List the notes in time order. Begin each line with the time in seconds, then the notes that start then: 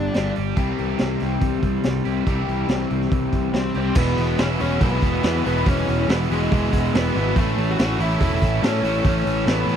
Already playing: G2 D3 G3 B3 D4 G4
0.14 G1 G2 D3 G3 B3 D4 G4, snare, open hi-hat
0.36 G1, open hi-hat
0.56 C2 C3 E3 G3 C4 E4 G4, kick, open hi-hat
0.79 C2, open hi-hat
0.99 C2, snare, open hi-hat
1.20 C2, snare, open hi-hat
1.41 C2, kick, open hi-hat
1.62 C2, kick, open hi-hat
1.84 C2, snare, open hi-hat
2.05 C2 C3 E3 G3 E4 G4, open hi-hat
2.26 C2 C3 E3 G3 E4 G4, kick, open hi-hat
2.30 C4
2.48 C2, open hi-hat
2.69 C2, snare, open hi-hat
2.91 C2, open hi-hat
3.01 snare
3.11 C2, kick, open hi-hat
3.33 C2, kick, open hi-hat
3.53 C2 C4, snare, open hi-hat
3.74 C2 C3 E3 G3 C4 E4 G4, open hi-hat
3.95 E1 E2 B2 E3 G#3 B3 E4 G#4 B4, kick, crash
4.17 E1 E3 G#3 B3 E4, open hi-hat
4.38 E1 E2 B2 E3 G#3 B3 C#4 E4, snare, open hi-hat
4.60 E1 E2 B2 E3 G#3 B3 C#4 E4, open hi-hat
4.80 B1 E2 B2 E3 G#3 B3 E4, kick, open hi-hat
5.02 E1 E3 G#3 B3 E4, kick, open hi-hat
5.23 E2 B2 E3 G#3 B3 E4, snare, open hi-hat
5.45 E1 E2 B2 E3 G#3 B3 E4, open hi-hat
5.66 E1 E2 B2 E3 G#3 B3 C#4 E4, kick, open hi-hat
5.87 E1 E3 G#3 B3 E4, open hi-hat
6.08 E1 E2 B2 E3 G#3 B3 E4, snare, open hi-hat
6.30 E1 E2 B2 E3 G#3 B3 E4, open hi-hat
6.50 E1 E2 B2 E3 G#3 B3 E4, kick, open hi-hat
6.73 E1 E3 G#3 B3 E4, kick, open hi-hat
6.93 E1 E2 B2 E3 G#3 B3 E4, snare, open hi-hat
7.14 G#1 E2 B2 E3 G#3 B3 E4, open hi-hat
7.35 A1 A2 E3 A3 C#4 E4 A4, kick, open hi-hat
7.57 A1 A3 C#4 E4, open hi-hat
7.71 F#4
7.77 A1 A2 E3 A3 C#4 E4, snare, open hi-hat
7.99 A1 A2 E3 A3 C#4 E4, open hi-hat
8.19 E1 A2 E3 A3 C#4 E4, kick, open hi-hat
8.42 A1 A3 C#4 E4, kick, open hi-hat
8.61 A2 E3 A3 C#4 E4, snare, open hi-hat
8.83 A1 A2 E3 A3 C#4 E4, open hi-hat
9.04 A1 A2 E3 A3 C#4 E4, kick, open hi-hat
9.26 A1 A3 C#4 E4, open hi-hat
9.46 A1 A2 E3 A3 B3 C#4 E4, snare, open hi-hat
9.67 A1 A2 E3 A3 C#4 E4, open hi-hat